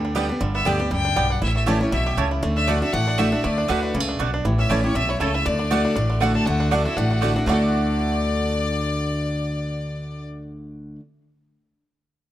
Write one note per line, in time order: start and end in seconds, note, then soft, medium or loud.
0.00 0.28 D2 medium
0.00 0.14 D3 medium
0.00 0.15 G3 medium
0.00 0.05 D4 medium
0.00 0.14 G4 medium
0.05 0.28 D4 medium
0.15 0.29 D3 medium
0.15 0.52 G3 medium
0.15 0.29 G3 medium
0.15 0.25 B3 medium
0.15 0.30 B3 medium
0.15 0.26 G4 loud
0.15 0.28 G4 loud
0.15 0.26 D5 medium
0.15 0.26 G5 loud
0.29 0.41 B3 soft
0.29 0.64 D4 medium
0.29 0.40 G4 medium
0.41 0.60 G1 loud
0.41 0.89 G2 medium
0.41 0.77 D3 medium
0.55 0.89 B3 medium
0.55 0.68 E5 loud
0.65 0.87 D2 medium
0.65 0.79 D3 medium
0.65 0.80 G3 medium
0.65 0.76 B3 loud
0.65 0.80 B3 medium
0.65 1.03 D4 medium
0.65 0.76 G4 medium
0.65 0.78 G4 medium
0.65 0.76 D5 medium
0.65 0.91 D5 medium
0.65 0.76 G5 loud
0.79 0.92 B3 medium
0.79 0.91 G4 medium
0.79 1.14 G4 medium
0.91 1.13 C#2 medium
0.91 1.15 F#2 medium
0.91 1.15 G3 medium
0.91 1.33 G5 loud
1.05 1.29 D4 medium
1.16 1.38 B1 medium
1.16 1.41 G2 medium
1.16 1.42 G3 medium
1.16 1.26 B3 medium
1.16 1.26 G4 medium
1.16 1.27 D5 medium
1.16 1.27 G5 loud
1.30 1.41 D4 medium
1.30 1.42 F#5 medium
1.42 1.80 A1 loud
1.42 1.90 A2 medium
1.42 1.78 E4 medium
1.42 1.55 E5 loud
1.56 1.80 A3 medium
1.56 1.66 E5 medium
1.66 1.80 E3 medium
1.66 1.77 A3 medium
1.66 1.81 A3 medium
1.66 1.81 C#4 loud
1.66 1.77 E4 loud
1.66 1.79 E4 loud
1.66 2.04 G4 medium
1.66 1.77 C#5 loud
1.66 1.80 D5 medium
1.66 1.77 A5 loud
1.81 2.42 A3 medium
1.81 1.93 C#4 soft
1.81 1.92 E4 medium
1.81 1.92 C#5 medium
1.92 2.14 B1 medium
1.92 2.16 B2 medium
1.92 2.29 E4 medium
1.92 2.16 E5 medium
2.06 2.41 G4 medium
2.17 2.39 C#2 loud
2.17 2.42 C#3 medium
2.17 2.27 A3 loud
2.17 2.43 C#4 medium
2.17 2.28 E4 loud
2.17 2.28 C#5 loud
2.17 2.28 A5 medium
2.31 2.43 E4 medium
2.42 2.81 D2 loud
2.42 2.66 D3 medium
2.42 2.93 A3 medium
2.56 2.67 D4 medium
2.56 2.69 E5 loud
2.56 2.71 E5 medium
2.67 2.81 D3 medium
2.67 2.78 A3 medium
2.67 2.82 A3 medium
2.67 2.81 D4 medium
2.67 2.82 D4 loud
2.67 2.78 F#4 medium
2.67 2.81 F#4 medium
2.67 2.81 D5 medium
2.67 2.78 D5 medium
2.67 2.82 D5 medium
2.67 2.78 F#5 loud
2.82 3.06 D4 soft
2.82 2.94 D4 medium
2.82 2.93 F#4 medium
2.82 2.94 E5 loud
2.82 2.95 E5 medium
2.93 3.31 A1 loud
2.93 3.42 A2 loud
2.93 3.44 A3 medium
2.93 3.19 F#5 loud
2.93 3.20 F#5 loud
3.07 3.17 D4 medium
3.18 3.32 D3 medium
3.18 3.28 A3 medium
3.18 3.32 A3 medium
3.18 3.31 D4 medium
3.18 3.32 D4 medium
3.18 3.28 F#4 loud
3.18 3.31 F#4 medium
3.18 3.28 D5 loud
3.18 3.45 E5 loud
3.18 3.46 E5 medium
3.18 3.29 F#5 loud
3.32 3.57 D4 medium
3.32 3.44 D4 medium
3.32 3.43 F#4 medium
3.43 3.63 D2 loud
3.43 3.67 D3 medium
3.43 3.94 A3 medium
3.43 3.70 D5 loud
3.43 3.71 D5 medium
3.58 3.68 D4 medium
3.68 3.91 D2 medium
3.68 3.93 D3 medium
3.68 3.79 A3 loud
3.68 3.93 A3 medium
3.68 3.82 D4 medium
3.68 3.94 D4 loud
3.68 3.79 F#4 loud
3.68 3.94 F#4 medium
3.68 3.94 B4 medium
3.68 3.95 B4 medium
3.68 3.79 D5 loud
3.68 3.79 F#5 loud
3.83 4.07 D4 medium
3.94 4.16 C#2 medium
3.94 4.19 C#3 medium
3.94 4.00 G3 medium
4.00 4.20 A3 medium
4.09 4.19 D4 medium
4.19 4.41 B1 medium
4.19 4.44 B2 medium
4.19 4.29 A3 medium
4.19 4.33 D4 medium
4.19 4.29 F#4 medium
4.19 4.30 D5 medium
4.19 4.30 F#5 loud
4.34 4.45 D4 medium
4.45 4.64 A1 loud
4.45 4.93 A2 medium
4.45 4.81 E3 medium
4.59 4.93 C#4 medium
4.59 4.72 E5 medium
4.59 4.71 E5 loud
4.69 4.91 A1 medium
4.69 4.83 E3 medium
4.69 4.80 A3 medium
4.69 4.84 A3 medium
4.69 4.84 C#4 loud
4.69 5.06 E4 medium
4.69 4.80 E4 loud
4.69 4.82 E4 medium
4.69 4.80 C#5 loud
4.69 4.83 D5 medium
4.69 4.84 D5 medium
4.69 4.80 A5 loud
4.84 4.96 C#4 medium
4.84 4.95 E4 medium
4.84 5.18 G4 medium
4.84 4.97 C#5 loud
4.95 5.16 B1 medium
4.95 5.19 B2 medium
4.95 5.20 A3 medium
4.95 5.11 E5 loud
4.95 5.12 E5 loud
5.09 5.33 E4 medium
5.09 5.20 C#5 medium
5.09 5.21 C#5 medium
5.20 5.42 C#2 medium
5.20 5.45 C#3 medium
5.20 5.30 A3 medium
5.20 5.70 A3 medium
5.20 5.30 E4 loud
5.20 5.36 A4 medium
5.20 5.31 C#5 loud
5.20 5.31 A5 medium
5.34 5.46 E4 medium
5.34 5.47 E5 loud
5.34 5.47 E5 medium
5.46 5.84 D2 loud
5.46 5.70 D3 medium
5.46 5.58 D4 medium
5.46 6.21 D5 medium
5.46 6.21 D5 loud
5.59 5.83 D4 medium
5.70 5.95 D3 loud
5.70 5.81 A3 medium
5.70 6.07 A3 medium
5.70 5.95 A3 medium
5.70 5.96 D4 loud
5.70 5.81 F#4 medium
5.70 5.96 F#4 medium
5.70 5.81 D5 loud
5.70 5.81 F#5 loud
5.85 5.94 D4 medium
5.96 6.34 A1 medium
5.96 6.44 A2 medium
5.96 6.20 D4 medium
6.10 6.44 D3 medium
6.20 6.45 D3 medium
6.20 6.31 A3 medium
6.20 6.46 A3 medium
6.20 6.34 D4 medium
6.20 6.46 D4 medium
6.20 6.31 F#4 medium
6.20 6.46 F#4 medium
6.20 6.31 D5 medium
6.20 6.31 F#5 loud
6.35 6.46 D4 medium
6.35 6.48 A4 medium
6.35 6.47 A5 loud
6.45 6.84 D2 loud
6.45 6.71 D3 medium
6.45 6.83 A3 medium
6.45 6.74 F#4 medium
6.45 6.73 F#5 loud
6.60 6.70 D4 medium
6.71 6.85 D3 medium
6.71 6.81 A3 medium
6.71 6.86 A3 medium
6.71 6.96 D4 medium
6.71 6.86 D4 medium
6.71 6.86 D4 loud
6.71 6.81 F#4 medium
6.71 6.85 F#4 medium
6.71 6.85 D5 medium
6.71 6.82 D5 loud
6.71 6.82 F#5 loud
6.85 7.20 A3 medium
6.85 6.98 D4 soft
6.85 6.99 E4 medium
6.85 6.97 F#4 medium
6.85 6.98 E5 medium
6.97 7.35 A1 loud
6.97 7.46 A2 medium
6.97 7.10 D4 medium
6.97 7.37 F#4 medium
6.97 7.36 F#5 medium
7.11 7.35 D4 medium
7.21 7.36 D3 medium
7.21 7.32 A3 medium
7.21 7.46 A3 medium
7.21 7.36 A3 medium
7.21 7.36 D4 medium
7.21 7.32 F#4 medium
7.21 7.34 F#4 medium
7.21 7.32 D5 medium
7.21 7.32 F#5 medium
7.36 7.47 D4 medium
7.36 7.48 D4 soft
7.36 7.47 F#4 medium
7.46 10.95 D2 loud
7.46 10.99 D3 medium
7.46 10.99 A3 medium
7.46 10.95 A3 medium
7.46 10.99 A3 medium
7.46 11.00 D4 medium
7.46 10.96 D4 medium
7.46 10.99 F#4 medium
7.46 11.01 F#4 loud
7.46 10.25 D5 loud
7.46 10.26 D5 medium
7.46 11.00 D5 medium
7.46 11.01 F#5 medium
7.52 10.97 F#4 medium
7.52 10.98 A4 medium